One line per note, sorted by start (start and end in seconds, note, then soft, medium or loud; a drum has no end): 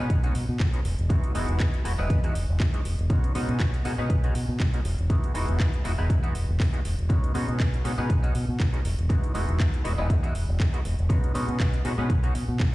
0.00 0.20 G#3 medium
0.00 0.20 B3 medium
0.00 0.20 C#4 medium
0.00 0.20 D#4 medium
0.00 0.20 B4 medium
0.10 0.29 B1 medium
0.10 kick loud
0.10 closed hi-hat medium
0.23 0.34 G#3 medium
0.23 0.34 B3 medium
0.23 0.34 C#4 medium
0.23 0.34 D#4 medium
0.23 0.34 F#4 medium
0.23 closed hi-hat medium
0.35 0.45 B2 medium
0.35 open hi-hat medium
0.49 0.57 B2 medium
0.60 0.70 B1 medium
0.60 kick loud
0.60 clap loud
0.60 closed hi-hat medium
0.73 0.80 G#3 medium
0.73 0.80 B3 medium
0.73 0.80 C#4 medium
0.73 0.80 D#4 medium
0.73 0.80 F#4 medium
0.73 closed hi-hat medium
0.85 0.95 E1 loud
0.85 open hi-hat loud
0.99 1.07 E1 medium
0.99 closed hi-hat soft
1.09 1.20 E2 medium
1.09 1.32 G#3 medium
1.09 1.32 B3 medium
1.09 1.32 D#4 medium
1.09 1.32 E4 medium
1.09 1.32 F#4 medium
1.09 kick loud
1.09 closed hi-hat medium
1.24 closed hi-hat soft
1.35 1.45 E1 medium
1.35 1.82 G#3 medium
1.35 1.82 B3 medium
1.35 1.82 D#4 medium
1.35 1.82 E4 medium
1.35 1.83 F#4 medium
1.35 open hi-hat loud
1.49 1.57 E1 medium
1.49 closed hi-hat soft
1.60 1.70 E2 medium
1.60 kick loud
1.60 clap loud
1.60 closed hi-hat medium
1.74 closed hi-hat soft
1.84 1.95 E1 medium
1.84 1.92 G#3 medium
1.84 1.92 B3 medium
1.84 1.93 D#4 medium
1.84 1.93 E4 medium
1.84 1.93 F#4 medium
1.84 open hi-hat loud
1.98 2.07 E1 medium
1.98 2.20 G#3 medium
1.98 2.20 B3 medium
1.98 2.20 D#4 medium
1.98 2.20 E4 medium
1.98 2.20 B4 medium
2.10 2.29 E2 medium
2.10 kick loud
2.10 closed hi-hat medium
2.23 2.34 G#3 medium
2.23 2.34 B3 medium
2.23 2.34 D#4 medium
2.23 2.34 E4 medium
2.23 2.34 F#4 medium
2.23 closed hi-hat medium
2.35 2.45 E1 medium
2.35 open hi-hat loud
2.49 2.57 E1 medium
2.60 2.70 E2 medium
2.60 kick loud
2.60 clap loud
2.60 closed hi-hat medium
2.73 2.80 G#3 medium
2.73 2.80 B3 medium
2.73 2.80 D#4 medium
2.73 2.80 E4 medium
2.73 2.80 F#4 medium
2.73 closed hi-hat medium
2.85 2.95 E1 loud
2.85 open hi-hat loud
2.99 3.07 E1 medium
2.99 closed hi-hat soft
3.10 3.20 B1 loud
3.10 3.32 G#3 medium
3.10 3.32 B3 medium
3.10 3.32 C#4 medium
3.10 3.32 D#4 medium
3.10 3.33 F#4 loud
3.10 kick loud
3.10 closed hi-hat medium
3.24 closed hi-hat soft
3.35 3.45 B2 medium
3.35 3.82 G#3 medium
3.35 3.82 B3 medium
3.35 3.82 C#4 medium
3.35 3.83 D#4 medium
3.35 3.83 F#4 medium
3.35 open hi-hat loud
3.49 3.57 B2 medium
3.49 closed hi-hat soft
3.60 3.70 B1 medium
3.60 kick loud
3.60 clap loud
3.60 closed hi-hat medium
3.74 closed hi-hat soft
3.85 3.95 B2 medium
3.85 3.92 G#3 medium
3.85 3.92 B3 medium
3.85 3.93 C#4 medium
3.85 3.93 D#4 medium
3.85 3.93 F#4 medium
3.85 open hi-hat loud
3.98 4.07 B2 loud
3.98 4.20 G#3 medium
3.98 4.20 B3 medium
3.98 4.20 C#4 medium
3.98 4.20 D#4 medium
3.98 4.21 B4 medium
4.10 4.29 B1 medium
4.10 kick loud
4.10 closed hi-hat medium
4.23 4.34 G#3 medium
4.23 4.34 B3 medium
4.23 4.34 C#4 medium
4.23 4.34 D#4 medium
4.23 4.34 F#4 medium
4.23 closed hi-hat soft
4.35 4.45 B2 medium
4.35 open hi-hat loud
4.49 4.57 B2 medium
4.60 4.70 B1 medium
4.60 kick loud
4.60 clap loud
4.60 closed hi-hat medium
4.73 4.80 G#3 medium
4.73 4.80 B3 medium
4.73 4.80 C#4 medium
4.73 4.80 D#4 medium
4.73 4.80 F#4 medium
4.73 closed hi-hat soft
4.85 4.95 E1 loud
4.85 open hi-hat loud
4.99 5.07 E1 medium
4.99 closed hi-hat soft
5.10 5.20 E2 medium
5.10 5.32 G#3 medium
5.10 5.32 B3 medium
5.10 5.32 D#4 medium
5.10 5.32 E4 medium
5.10 5.32 F#4 medium
5.10 kick loud
5.10 closed hi-hat medium
5.24 closed hi-hat soft
5.34 5.45 E1 medium
5.34 5.82 G#3 medium
5.34 5.82 B3 medium
5.34 5.82 D#4 medium
5.34 5.82 E4 medium
5.34 5.82 F#4 medium
5.34 open hi-hat loud
5.49 5.57 E1 medium
5.49 closed hi-hat soft
5.60 5.70 E2 medium
5.60 kick loud
5.60 clap loud
5.60 closed hi-hat medium
5.74 closed hi-hat soft
5.84 5.95 E1 medium
5.84 5.92 G#3 medium
5.84 5.92 B3 medium
5.84 5.92 D#4 medium
5.84 5.93 E4 medium
5.84 5.93 F#4 medium
5.84 open hi-hat loud
5.98 6.07 E1 medium
5.98 6.20 G#3 medium
5.98 6.20 B3 medium
5.98 6.20 D#4 medium
5.98 6.20 E4 medium
5.98 6.20 B4 medium
6.10 6.29 E2 medium
6.10 kick loud
6.10 closed hi-hat medium
6.23 6.33 G#3 medium
6.23 6.33 B3 medium
6.23 6.34 D#4 medium
6.23 6.34 E4 medium
6.23 6.34 F#4 medium
6.23 closed hi-hat medium
6.35 6.45 E1 medium
6.35 open hi-hat loud
6.49 6.57 E1 medium
6.60 6.70 E2 medium
6.60 kick loud
6.60 clap loud
6.60 open hi-hat medium
6.73 6.80 G#3 medium
6.73 6.80 B3 medium
6.73 6.80 D#4 medium
6.73 6.80 E4 medium
6.73 6.80 F#4 medium
6.73 closed hi-hat soft
6.85 6.95 E1 medium
6.85 open hi-hat loud
6.98 7.07 E1 medium
6.98 closed hi-hat soft
7.09 7.20 B1 medium
7.09 7.32 G#3 medium
7.09 7.32 B3 medium
7.09 7.32 C#4 medium
7.09 7.32 D#4 medium
7.09 7.32 F#4 medium
7.09 kick loud
7.09 closed hi-hat medium
7.24 closed hi-hat soft
7.34 7.45 B2 medium
7.34 7.82 G#3 medium
7.34 7.82 B3 medium
7.34 7.82 C#4 medium
7.34 7.82 D#4 medium
7.34 7.82 F#4 medium
7.34 open hi-hat loud
7.48 7.57 B2 medium
7.48 closed hi-hat soft
7.60 7.70 B1 medium
7.60 kick loud
7.60 clap loud
7.60 closed hi-hat medium
7.74 closed hi-hat soft
7.84 7.95 B2 medium
7.84 7.92 G#3 medium
7.84 7.92 B3 medium
7.84 7.92 C#4 medium
7.84 7.93 D#4 medium
7.84 7.93 F#4 medium
7.84 open hi-hat loud
7.98 8.07 B2 medium
7.98 8.20 G#3 medium
7.98 8.20 B3 medium
7.98 8.20 C#4 medium
7.98 8.20 D#4 medium
7.98 8.20 B4 medium
8.10 8.29 B1 medium
8.10 kick loud
8.10 closed hi-hat medium
8.22 8.33 G#3 medium
8.22 8.33 B3 medium
8.22 8.34 C#4 medium
8.22 8.34 D#4 medium
8.22 8.34 F#4 medium
8.22 closed hi-hat soft
8.35 8.45 B2 medium
8.35 open hi-hat loud
8.49 8.57 B2 medium
8.60 8.70 B1 medium
8.60 kick loud
8.60 clap loud
8.60 closed hi-hat medium
8.73 8.80 G#3 medium
8.73 8.80 B3 medium
8.73 8.80 C#4 medium
8.73 8.80 D#4 medium
8.73 8.80 F#4 medium
8.73 closed hi-hat soft
8.85 8.95 E1 loud
8.85 open hi-hat loud
8.99 9.07 E1 medium
8.99 closed hi-hat soft
9.09 9.20 E2 medium
9.09 9.32 G#3 medium
9.09 9.32 B3 medium
9.09 9.32 D#4 medium
9.09 9.32 E4 medium
9.09 9.32 F#4 medium
9.09 kick loud
9.09 closed hi-hat medium
9.24 closed hi-hat soft
9.34 9.45 E1 medium
9.34 9.82 G#3 medium
9.34 9.82 B3 medium
9.34 9.82 D#4 medium
9.34 9.82 E4 medium
9.34 9.82 F#4 medium
9.34 open hi-hat loud
9.48 9.57 E1 medium
9.48 closed hi-hat soft
9.60 9.70 E2 medium
9.60 kick loud
9.60 clap loud
9.60 closed hi-hat medium
9.74 closed hi-hat medium
9.84 9.95 E1 medium
9.84 9.92 G#3 medium
9.84 9.92 B3 medium
9.84 9.92 D#4 medium
9.84 9.93 E4 medium
9.84 9.93 F#4 medium
9.84 open hi-hat loud
9.98 10.07 E1 loud
9.98 10.20 G#3 medium
9.98 10.20 B3 medium
9.98 10.20 D#4 medium
9.98 10.20 E4 medium
9.98 10.20 B4 medium
10.10 10.29 E2 medium
10.10 kick loud
10.10 closed hi-hat medium
10.23 10.33 G#3 medium
10.23 10.33 B3 medium
10.23 10.34 D#4 medium
10.23 10.34 E4 medium
10.23 10.34 F#4 medium
10.23 closed hi-hat medium
10.35 10.45 E1 medium
10.35 open hi-hat loud
10.48 10.57 E1 medium
10.60 10.70 E2 loud
10.60 kick loud
10.60 clap loud
10.60 closed hi-hat medium
10.73 10.80 G#3 medium
10.73 10.80 B3 medium
10.73 10.80 D#4 medium
10.73 10.80 E4 medium
10.73 10.80 F#4 medium
10.73 closed hi-hat soft
10.85 10.95 E1 loud
10.85 open hi-hat loud
10.98 11.07 E1 medium
10.98 closed hi-hat soft
11.09 11.20 B1 loud
11.09 11.32 G#3 medium
11.09 11.32 B3 medium
11.09 11.32 C#4 medium
11.09 11.32 D#4 medium
11.09 11.32 F#4 loud
11.09 kick loud
11.09 closed hi-hat medium
11.24 closed hi-hat medium
11.34 11.45 B2 medium
11.34 11.82 G#3 medium
11.34 11.82 B3 medium
11.34 11.82 C#4 medium
11.34 11.82 D#4 medium
11.34 11.82 F#4 medium
11.34 open hi-hat loud
11.48 11.57 B2 medium
11.48 closed hi-hat soft
11.60 11.70 B1 loud
11.60 kick loud
11.60 clap loud
11.60 closed hi-hat medium
11.74 closed hi-hat medium
11.85 11.95 B2 medium
11.85 11.92 G#3 medium
11.85 11.93 B3 medium
11.85 11.93 C#4 medium
11.85 11.93 D#4 medium
11.85 11.93 F#4 medium
11.85 open hi-hat loud
11.98 12.07 B2 medium
11.98 12.20 G#3 medium
11.98 12.20 B3 medium
11.98 12.20 C#4 medium
11.98 12.20 D#4 medium
11.98 12.20 B4 medium
12.10 12.29 B1 medium
12.10 kick loud
12.10 closed hi-hat medium
12.23 12.33 G#3 medium
12.23 12.34 B3 medium
12.23 12.34 C#4 medium
12.23 12.34 D#4 medium
12.23 12.34 F#4 medium
12.23 closed hi-hat medium
12.35 12.45 B2 medium
12.35 open hi-hat medium
12.48 12.57 B2 medium
12.60 12.70 B1 medium
12.60 kick loud
12.60 clap loud
12.60 closed hi-hat medium